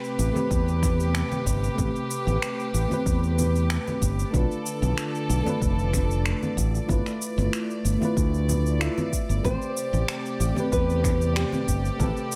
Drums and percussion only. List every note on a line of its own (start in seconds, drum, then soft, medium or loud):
0.04 cabasa soft
0.19 cabasa medium
0.36 high conga medium
0.36 cabasa soft
0.51 kick loud
0.51 cabasa soft
0.68 cabasa soft
0.83 finger snap soft
0.83 kick loud
0.83 high conga medium
0.83 low conga medium
0.83 cabasa medium
1.00 cabasa soft
1.15 finger snap medium
1.15 cabasa soft
1.32 high conga medium
1.32 cabasa soft
1.46 kick medium
1.46 cabasa medium
1.64 cabasa soft
1.78 kick loud
1.78 high conga medium
1.78 cabasa soft
1.96 cabasa soft
2.11 cabasa medium
2.28 high conga medium
2.28 cabasa soft
2.42 finger snap medium
2.42 cabasa soft
2.60 cabasa soft
2.75 cabasa medium
2.91 high conga medium
2.91 cabasa soft
3.06 kick loud
3.06 cabasa soft
3.24 cabasa soft
3.38 high conga medium
3.38 low conga medium
3.38 cabasa medium
3.56 cabasa soft
3.70 finger snap medium
3.70 cabasa soft
3.87 high conga medium
3.87 cabasa soft
4.02 kick medium
4.02 cabasa medium
4.19 cabasa soft
4.34 kick medium
4.34 high conga medium
4.34 cabasa soft
4.51 cabasa soft
4.66 cabasa medium
4.83 high conga medium
4.83 cabasa soft
4.98 finger snap medium
4.98 cabasa soft
5.15 cabasa soft
5.30 cabasa medium
5.46 high conga medium
5.46 cabasa soft
5.61 kick loud
5.61 cabasa soft
5.79 cabasa soft
5.93 finger snap soft
5.93 kick medium
5.93 high conga medium
5.93 low conga medium
5.93 cabasa medium
6.11 cabasa soft
6.26 finger snap medium
6.26 cabasa soft
6.43 high conga medium
6.43 cabasa soft
6.57 kick medium
6.57 cabasa medium
6.75 cabasa soft
6.89 kick loud
6.89 high conga medium
6.89 cabasa soft
7.06 finger snap soft
7.06 cabasa soft
7.22 cabasa medium
7.39 high conga medium
7.39 cabasa soft
7.53 finger snap medium
7.53 cabasa soft
7.71 cabasa soft
7.85 cabasa medium
8.02 high conga medium
8.02 cabasa soft
8.17 kick loud
8.17 cabasa soft
8.34 cabasa soft
8.48 high conga medium
8.48 low conga medium
8.48 cabasa medium
8.66 cabasa soft
8.81 finger snap medium
8.81 cabasa soft
8.98 high conga medium
8.98 cabasa soft
9.12 kick medium
9.12 cabasa medium
9.30 cabasa soft
9.44 kick loud
9.44 high conga medium
9.44 cabasa soft
9.62 cabasa soft
9.77 cabasa medium
9.93 high conga medium
9.93 cabasa soft
10.08 finger snap loud
10.08 cabasa soft
10.26 cabasa soft
10.41 cabasa medium
10.56 high conga medium
10.56 cabasa soft
10.72 kick loud
10.72 cabasa soft
10.90 cabasa soft
11.04 finger snap soft
11.04 kick loud
11.04 high conga medium
11.04 low conga medium
11.04 cabasa medium
11.22 cabasa soft
11.36 finger snap loud
11.36 cabasa soft
11.52 high conga medium
11.52 cabasa soft
11.68 kick medium
11.68 cabasa medium
11.85 cabasa soft
12.00 kick loud
12.00 high conga medium
12.00 cabasa soft
12.17 cabasa soft
12.32 cabasa medium